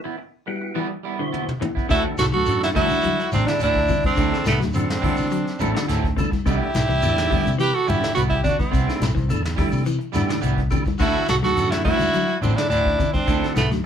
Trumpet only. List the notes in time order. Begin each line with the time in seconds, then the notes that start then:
1.93 F#4
2.21 A4
2.34 A4
2.63 F#4
2.76 F#4
3.33 D4
3.48 E4
3.61 E4
4.06 D4
4.50 B3
4.77 D4
6.47 G4
7.61 B4
7.74 A4
7.88 G4
8.17 B4
8.35 G4
8.48 F#4
8.62 E4
10.99 F#4
11.29 A4
11.44 A4
11.71 F#4
11.83 F#4
12.40 D4
12.54 E4
12.72 E4
13.15 D4
13.55 B3